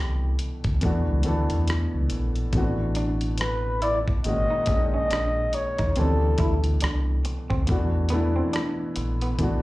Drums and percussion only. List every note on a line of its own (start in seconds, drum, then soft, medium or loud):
0.39 closed hi-hat medium
0.64 kick medium
0.64 closed hi-hat soft
0.81 kick medium
0.81 closed hi-hat medium
1.23 closed hi-hat medium
1.50 closed hi-hat soft
1.68 cross-stick medium
1.68 closed hi-hat medium
2.10 closed hi-hat medium
2.36 closed hi-hat soft
2.53 kick medium
2.53 closed hi-hat medium
2.95 closed hi-hat medium
3.21 closed hi-hat soft
3.38 cross-stick loud
3.38 closed hi-hat medium
3.82 closed hi-hat medium
4.08 kick medium
4.24 closed hi-hat medium
4.66 kick medium
4.66 closed hi-hat medium
5.11 cross-stick medium
5.11 closed hi-hat medium
5.53 closed hi-hat medium
5.78 kick medium
5.78 closed hi-hat soft
5.96 closed hi-hat medium
6.38 kick medium
6.38 closed hi-hat medium
6.64 closed hi-hat soft
6.81 cross-stick loud
6.81 closed hi-hat medium
7.25 closed hi-hat medium
7.50 kick medium
7.67 kick medium
7.67 closed hi-hat medium
8.09 closed hi-hat medium
8.53 cross-stick medium
8.53 closed hi-hat medium
8.96 closed hi-hat medium
9.21 closed hi-hat soft
9.39 kick medium
9.39 closed hi-hat medium